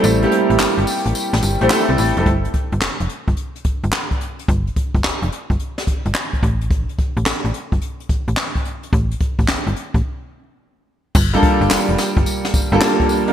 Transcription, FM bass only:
X:1
M:4/4
L:1/16
Q:"Swing 16ths" 1/4=108
K:Aphr
V:1 name="FM bass" clef=bass
A,,,2 z A,,, z G,,, z A,,, z A,,, G,,, A,,, z C,, A,,, F,,, | G,,,2 z G,,, F,,, F,,, z G,,, z2 G,,, G,,, z4 | G,,,2 z G,,, F,,, F,,, z G,,, z2 G,,, G,,, z2 A,,,2- | A,,,2 z A,,, A,,, A,,, z G,,, z2 A,,, A,,, z4 |
A,,,2 z A,,, G,,, G,,, z A,,, z8 | G,,,2 z G,,, F,,, F,,, z G,,, z2 G,,, G,,, z4 |]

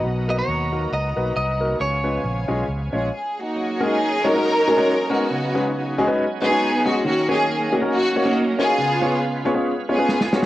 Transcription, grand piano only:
X:1
M:4/4
L:1/16
Q:"Swing" 1/4=138
K:F#
V:1 name="Grand piano"
z2 [A,DFB] z3 [A,DFA] z3 [A,DFB] z3 [A,DFA] z | z2 [G,CEB] z3 [G,CEG] z3 [G,CEc] z4 z | z2 [G,CDFA] z3 [G,CDFc] [G,CDFA] z2 [G,CDFG] [G,CDFc] z2 [G,CDFA] z | z2 [G,CDFB] z3 [G,CDFG] [G,CDFB] z2 [G,CDFB] [G,CDFc] z2 [G,CDFG] z |
z2 [A,CDFc] z3 [A,CDFG] [A,CDFA] z2 [A,CDFc] [A,CDFc] z2 [A,CDFc] z | z2 [B,CEGc] z3 [B,CEGc] [B,CEGc] z2 [B,CEGc] [B,CEGB] z2 [B,CEGc] z |]
V:2 name="Grand piano" clef=bass
B,,6 z8 z2 | C,6 z8 z2 | z16 | C,6 z8 z2 |
D,6 z8 z2 | C,6 z8 z2 |]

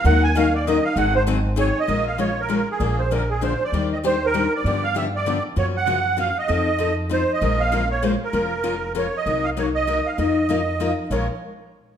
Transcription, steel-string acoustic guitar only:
X:1
M:3/4
L:1/8
Q:"Swing" 1/4=195
K:Abmix
V:1 name="Steel-string acoustic guitar"
[E,G,DEB] z [E,G,DEB] z [E,G,DEB] z | [E,G,CEA] z [E,G,CEA] z [E,G,CEA] z | [K:Bbm] [F,A,DFB] z [F,A,DFB] z [F,A,DFB] z | [=D,F,B,=DA] z [D,F,B,DA] z [D,F,B,DA] z |
[E,=G,B,=D=G] z [E,G,B,DG] z [E,G,B,DG] z | [=D,F,=B,=D=G] z [D,F,B,DG] z [D,F,B,DG] z | [D,F,B,DG] z [D,F,B,DG] z [D,F,B,DG] z | [F,CE=A] z [F,CEA] z [F,CEA] z |
[F,A,DFB] z [F,A,DFB] z [F,A,DFB] z | [F,A,DFB] z [F,A,DFB] z [F,A,DFB] z | [C,G,B,EB] z [C,G,B,EB] z [C,G,B,EB] z | [F,B,EFB] z [F,B,EFB] z [F,B,EFB] z |
[B,,F,A,DFB] z4 z |]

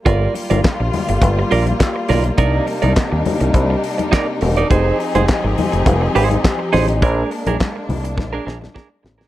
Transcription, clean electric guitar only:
X:1
M:4/4
L:1/16
Q:1/4=103
K:Gphr
V:1 name="Clean electric guitar"
[FBd]2 z [FBd] z6 [FBd] z3 [FBd] z | [EBd]2 z [EBd] z8 [EBd] z2 [EBd] | [EAc]2 z [EAc] z6 [EAc] z3 [EAc] z | [DAB]2 z [DAB] z4 z [DAB] [DAB] z [DAB] z2 [DAB] |]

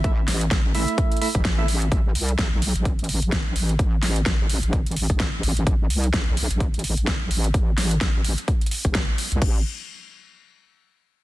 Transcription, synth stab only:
X:1
M:4/4
L:1/16
Q:"Swing 16ths" 1/4=128
K:Am
V:1 name="Synth stab"
[A,Ee] z4 z [A,Ee]4 [A,Ee] z2 [A,Ee] z2 | z16 | z16 | z16 |
z16 | z16 |]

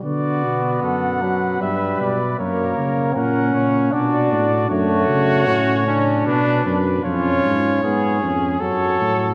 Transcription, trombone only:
X:1
M:3/4
L:1/8
Q:1/4=77
K:Bm
V:1 name="Trombone"
B,3 F, G,2 | ^A,2 C2 D2 | A,2 C D2 z | C2 B, C F,2 |]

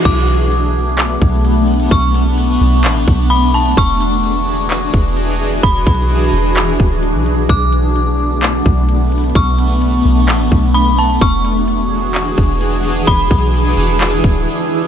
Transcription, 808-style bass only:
X:1
M:4/4
L:1/16
Q:1/4=129
K:Bdor
V:1 name="808-style bass" clef=bass
B,,,8- B,,,2 B,,,6 | B,,,6 B,,,2 A,,,2 B,,,6 | E,,,8- E,,,2 E,,,6 | E,,,2 B,,,4 E,,,4 D,,,3 B,,,3 |
B,,,8- B,,,2 B,,,6 | B,,,6 B,,,2 A,,,2 B,,,6 | E,,,8- E,,,2 E,,,6 | E,,,2 B,,,4 E,,,4 D,,,2 z4 |]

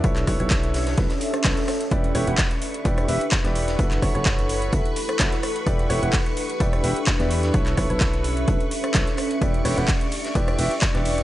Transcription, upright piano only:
X:1
M:4/4
L:1/16
Q:"Swing 16ths" 1/4=128
K:Edor
V:1 name="Upright piano"
[EABc]2 [EABc] [EABc]4- [EABc] [EABe] z3 [EABc] z3 | [EGBd]2 [EGBc] [EGBf] z4 [EGBd]2 [EGBe] z2 [EGBd]3 | [EFAB]2 [EFAc] [EFAc]4- [EFAc] [EFAe] z3 [EFAc] z3 | [EGBd]2 [EGBc] [EGBf] z4 [EGBd]2 [EGBe] z2 [EGBd]3 |
[EABc]2 [EABc] [EABc]4- [EABc] [EABe] z3 [EABc] z3 | [EGBd]2 [EGBc] [EGBf] z4 [EGBd]2 [EGBe] z2 [EGBd]3 |]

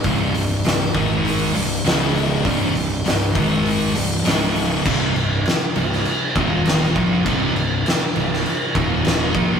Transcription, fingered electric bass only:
X:1
M:4/4
L:1/8
Q:1/4=100
K:Cm
V:1 name="Fingered electric bass" clef=bass
C,,, C,,, C,,, A,,,2 C,,, _D,,,2 | C,,, C,,, C,,, A,,,2 C,,, _D,,,2 | C,,, C,,, z C,,, z E,,,2 B,,, | C,,, C,,, z C,,, z E,,,2 B,,, |]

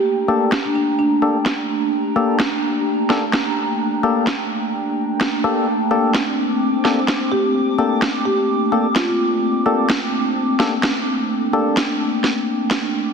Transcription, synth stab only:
X:1
M:4/4
L:1/8
Q:"Swing 16ths" 1/4=128
K:Gm
V:1 name="Synth stab"
z [B,DGA] z3 [B,DGA] z2 | z [B,DGA] z3 [B,DGA] z2 | z [B,DGA] z4 z [B,DGA] | z [B,DGA] z3 [B,DGA] z2 |
z [B,DGA] z3 [B,DGA] z2 | z [B,DGA] z3 [B,DGA] z2 | z [B,DGA] z6 |]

